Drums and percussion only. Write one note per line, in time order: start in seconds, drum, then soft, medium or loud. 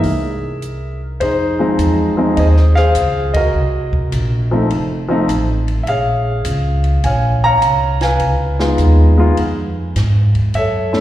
0.03 open hi-hat soft
0.62 closed hi-hat soft
1.21 ride medium
1.79 hi-hat pedal medium
1.79 ride medium
2.37 ride medium
2.57 snare soft
2.76 snare soft
2.95 hi-hat pedal medium
2.95 ride medium
3.34 kick medium
3.34 ride medium
3.93 kick medium
4.12 hi-hat pedal medium
4.12 ride medium
4.70 ride medium
5.29 hi-hat pedal medium
5.29 ride medium
5.68 ride soft
5.87 ride medium
6.45 hi-hat pedal medium
6.45 ride medium
6.84 ride soft
7.04 ride medium
7.62 hi-hat pedal soft
7.62 ride medium
8.01 snare medium
8.01 ride soft
8.20 ride medium
8.59 snare medium
8.78 hi-hat pedal soft
8.78 ride medium
9.37 ride medium
9.96 snare soft
9.96 hi-hat pedal medium
9.96 ride medium
10.35 kick medium
10.35 ride soft
10.54 ride medium
10.93 snare soft